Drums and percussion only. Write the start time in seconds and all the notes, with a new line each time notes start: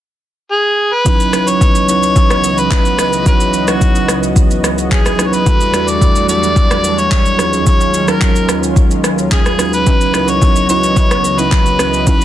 1.06 kick, shaker
1.20 shaker
1.33 cross-stick, shaker
1.47 shaker
1.61 kick, shaker
1.75 shaker
1.89 shaker
2.03 shaker
2.16 kick, shaker
2.30 cross-stick, shaker
2.44 shaker
2.58 shaker
2.71 kick, clap, shaker
2.85 shaker
2.99 cross-stick, shaker
3.13 shaker
3.26 kick, shaker
3.40 shaker
3.54 shaker
3.68 cross-stick, shaker
3.81 kick, shaker
3.95 shaker
4.08 cross-stick, shaker
4.23 shaker
4.36 kick, shaker
4.51 shaker
4.64 cross-stick, shaker
4.78 shaker
4.91 kick, clap, shaker
5.06 cross-stick, shaker
5.19 cross-stick, shaker
5.33 shaker
5.46 kick, shaker
5.61 shaker
5.74 cross-stick, shaker
5.88 shaker
6.01 kick, shaker
6.16 shaker
6.29 shaker
6.43 shaker
6.56 kick, shaker
6.71 cross-stick, shaker
6.84 shaker
6.98 shaker
7.11 kick, clap, shaker
7.26 shaker
7.39 cross-stick, shaker
7.53 shaker
7.67 kick, shaker
7.81 shaker
7.94 shaker
8.08 cross-stick, shaker
8.21 kick, clap, shaker
8.36 shaker
8.49 cross-stick, shaker
8.63 shaker
8.76 kick, shaker
8.91 shaker
9.04 cross-stick, shaker
9.18 shaker
9.31 kick, clap, shaker
9.46 cross-stick, shaker
9.59 cross-stick, shaker
9.73 shaker
9.87 kick, shaker
10.01 shaker
10.14 cross-stick, shaker
10.28 shaker
10.42 kick, shaker
10.56 shaker
10.69 shaker
10.84 shaker
10.96 kick, shaker
11.11 cross-stick, shaker
11.24 shaker
11.39 shaker
11.52 kick, clap, shaker
11.66 shaker
11.79 cross-stick, shaker
11.94 shaker
12.07 kick, shaker
12.21 shaker